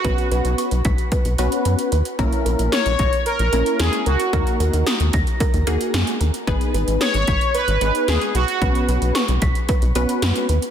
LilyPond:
<<
  \new Staff \with { instrumentName = "Synth pluck" } { \time 4/4 \key b \major \tempo 4 = 112 b'8 b'8 cis'''8 b'''8 b'8 b'8 r8 b'8 | ais'8 ais'8 cis'''8 ais'''8 ais'8 ais'8 r8 ais'8 | ais'8 ais'8 dis'''8 ais'''8 ais'8 ais'8 r8 ais'8 | b'8 b'8 dis'''8 b'''8 b'8 b'8 r8 b'8 |
b'8 b'8 cis'''8 b'''8 b'8 b'8 r8 b'8 | }
  \new Staff \with { instrumentName = "Analog polysynth" } { \time 4/4 \key b \major fis'4 r2. | r4 cis''4 ais'4 gis'8 fis'8~ | fis'4 r2. | r4 cis''4 b'4 gis'8 fis'8~ |
fis'4 r2. | }
  \new Staff \with { instrumentName = "Analog polysynth" } { \time 4/4 \key b \major <b cis' fis' b'>4. r4 <b cis' fis' b'>4 r8 | <ais cis' e' ais'>4. r4 <ais cis' e' ais'>4 r8 | <ais dis' fis' ais'>4. r4 <ais dis' fis' gis'>4 r8 | <b dis' gis' b'>4. r4 <b dis' gis' b'>4 r8 |
<b cis' fis' b'>4. r4 <b cis' fis' b'>4 r8 | }
  \new Staff \with { instrumentName = "Analog synth bass" } { \clef bass \time 4/4 \key b \major b,,16 r16 b,,16 b,,16 r16 b,,16 b,,16 r8 b,,16 b,,16 r16 fis,16 r16 dis,16 r16 | ais,,16 r16 ais,,16 ais,,16 r16 ais,,16 ais,,16 r8 ais,,16 ais,,16 r16 e,16 r16 cis,16 r16 | dis,16 r16 dis,16 dis,16 r16 dis,16 dis,16 r8 dis,16 dis,16 r16 fis,16 r16 dis,16 r16 | gis,,16 r16 gis,,16 gis,,16 r16 gis,,16 gis,,16 r8 gis,,16 gis,,16 r16 dis,16 r16 b,,16 r16 |
b,,16 r16 b,,16 b,,16 r16 b,,16 b,,16 r8 b,,16 b,,16 r16 fis,16 r16 dis,16 r16 | }
  \new DrumStaff \with { instrumentName = "Drums" } \drummode { \time 4/4 <hh bd>16 hh16 hh16 hh16 hh16 hh16 <hh bd>16 hh16 <hh bd>16 hh16 hh16 hh16 hh16 hh16 hh16 hh16 | <hh bd>16 hh16 hh16 hh16 <hh sn>16 hh16 <hh bd>16 hh16 hh16 hh16 hh16 hh16 <hh sn>16 hh16 hh16 hh16 | <hh bd>16 hh16 hh16 hh16 <hh sn>16 hh16 <hh bd>16 hh16 <hh bd>16 hh16 hh16 hh16 <hh sn>16 hh16 hh16 hh16 | <hh bd>16 hh16 hh16 hh16 <hh sn>16 hh16 <hh bd>16 hh16 hh16 hh16 hh16 hh16 <hh sn>16 hh16 hh16 hh16 |
<hh bd>16 hh16 hh16 hh16 <hh sn>16 hh16 <hh bd>16 hh16 <hh bd>16 hh16 hh16 hh16 <hh sn>16 hh16 hh16 hh16 | }
>>